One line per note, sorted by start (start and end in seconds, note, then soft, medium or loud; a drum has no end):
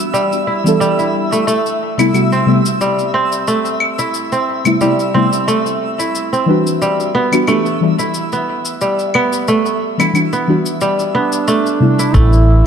0.00 0.12 G3 medium
0.00 0.80 A3 medium
0.00 1.52 B3 medium
0.00 0.47 E4 medium
0.00 12.16 E5 medium
0.14 0.79 G3 medium
0.14 cabasa soft
0.32 cabasa soft
0.47 0.99 E4 medium
0.64 1.45 E3 medium
0.64 1.46 G3 medium
0.64 1.46 B3 medium
0.64 1.47 D4 medium
0.64 cabasa medium
0.68 1.47 A4 loud
0.80 1.53 G3 medium
0.80 cabasa medium
0.99 1.99 E4 medium
0.99 cabasa soft
1.32 1.47 A3 medium
1.32 cabasa medium
1.47 3.47 A3 medium
1.47 cabasa medium
1.66 cabasa soft
1.98 2.10 C3 medium
1.98 2.10 G3 medium
1.98 2.11 A3 medium
1.98 2.11 B3 medium
1.98 3.56 E4 medium
1.98 2.11 E4 medium
1.98 cabasa medium
1.98 claves medium
2.13 2.44 C3 medium
2.13 2.44 G3 medium
2.13 2.44 A3 medium
2.13 2.44 B3 medium
2.13 2.44 F#4 medium
2.13 cabasa medium
2.13 claves soft
2.32 3.14 C4 medium
2.32 cabasa soft
2.46 2.59 C3 medium
2.46 2.60 G3 medium
2.46 2.60 A3 medium
2.46 2.60 B3 medium
2.46 2.60 G4 medium
2.66 cabasa medium
2.81 4.80 G3 medium
2.81 cabasa soft
2.99 cabasa soft
3.14 4.32 C4 medium
3.32 cabasa medium
3.48 5.47 A3 medium
3.48 cabasa soft
3.65 cabasa soft
3.80 claves medium
3.99 5.56 E4 medium
3.99 cabasa medium
4.14 cabasa medium
4.32 5.14 C4 medium
4.32 cabasa soft
4.65 4.76 C3 medium
4.65 4.76 G3 medium
4.65 4.76 A3 medium
4.65 4.77 B3 medium
4.65 4.77 E4 medium
4.65 cabasa medium
4.65 claves medium
4.80 4.93 C3 medium
4.80 4.93 G3 medium
4.80 6.80 G3 medium
4.80 4.94 A3 medium
4.80 4.94 B3 medium
4.80 4.94 E4 medium
4.80 cabasa soft
4.99 cabasa soft
5.14 5.27 C3 medium
5.14 5.27 G3 medium
5.14 5.27 A3 medium
5.14 5.28 B3 medium
5.14 6.32 C4 medium
5.14 5.28 E4 medium
5.33 cabasa medium
5.48 7.47 A3 medium
5.48 cabasa soft
5.66 cabasa soft
5.99 7.56 E4 medium
5.99 cabasa medium
6.15 cabasa soft
6.33 7.21 C4 medium
6.33 cabasa soft
6.46 7.27 E3 medium
6.46 7.28 G3 medium
6.46 7.29 D4 medium
6.46 7.29 F#4 loud
6.46 7.29 B4 medium
6.67 cabasa medium
6.82 8.80 G3 medium
6.82 cabasa soft
7.00 cabasa soft
7.15 8.32 B3 medium
7.32 7.44 E3 medium
7.32 7.44 G3 medium
7.32 7.44 B3 medium
7.32 7.45 D4 medium
7.32 7.45 F#4 medium
7.32 cabasa medium
7.32 claves medium
7.47 7.77 E3 medium
7.47 7.77 G3 medium
7.47 9.48 A3 medium
7.47 7.78 B3 medium
7.47 7.78 D4 medium
7.47 7.78 G4 medium
7.47 cabasa soft
7.47 claves medium
7.66 cabasa soft
7.81 7.93 E3 medium
7.81 7.93 G3 medium
7.81 7.94 B3 medium
7.81 7.94 D4 medium
7.81 7.94 A4 medium
7.99 9.56 E4 medium
7.99 cabasa medium
8.14 cabasa soft
8.32 9.14 B3 medium
8.32 cabasa soft
8.65 cabasa medium
8.81 10.80 G3 medium
8.81 cabasa soft
8.99 cabasa soft
9.14 10.32 B3 medium
9.14 claves medium
9.33 cabasa medium
9.48 11.47 A3 medium
9.48 cabasa medium
9.66 cabasa soft
9.98 10.09 E3 medium
9.98 10.09 G3 medium
9.98 10.09 B3 medium
9.98 10.10 D4 medium
9.98 11.56 E4 medium
9.98 10.10 F#4 medium
9.98 cabasa medium
9.98 claves medium
10.13 10.26 E3 medium
10.13 10.27 G3 medium
10.13 10.27 B3 medium
10.13 10.27 D4 medium
10.13 10.27 F#4 medium
10.13 cabasa soft
10.13 claves medium
10.33 11.14 B3 medium
10.33 cabasa soft
10.47 10.60 E3 medium
10.47 10.60 G3 medium
10.47 10.60 B3 medium
10.47 10.61 D4 medium
10.47 10.61 F#4 loud
10.66 cabasa medium
10.81 12.20 G3 medium
10.81 cabasa soft
10.99 cabasa soft
11.14 12.67 B3 medium
11.14 12.16 D4 medium
11.32 cabasa medium
11.48 12.14 A3 medium
11.48 cabasa soft
11.66 cabasa soft
11.80 12.47 C3 medium
11.80 12.48 G3 medium
11.80 12.48 A3 medium
11.80 12.48 B3 medium
11.80 12.48 E4 loud
11.99 12.65 E4 medium
11.99 cabasa medium
12.14 12.61 A1 medium
12.14 12.67 A3 loud
12.14 12.67 E4 loud
12.14 kick loud
12.14 cabasa medium
12.33 cabasa soft